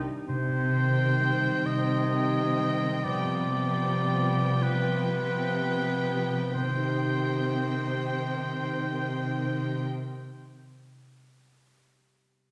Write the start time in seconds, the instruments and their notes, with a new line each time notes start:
Already playing: harp C3 G3 C4 D#4 G4, french horn section D4
0.27 cello section C3, harp C3, oboe C5
0.73 viola section D#3, violin section C4 G5, harp C4
1.20 harp G3
1.66 cello section C3, harp D#4, oboe D#5
2.11 viola section D#3, violin section C4 G5, harp G4
2.58 harp G3
3.04 harp C3, cello section C3, viola section F3, violin section B3 G5, oboe D5
3.53 viola section F3, harp G3, violin section B3 G5
4.05 harp B3
4.61 cello section C3, harp F4, oboe B4
5.21 viola section F3, violin section B3 G5, harp G4
5.89 harp B3
6.53 harp C3, cello section C3, viola section D#3, violin section C4 G5, oboe C5
6.61 harp C4
6.69 harp D#4
6.75 harp G4
6.82 harp D#5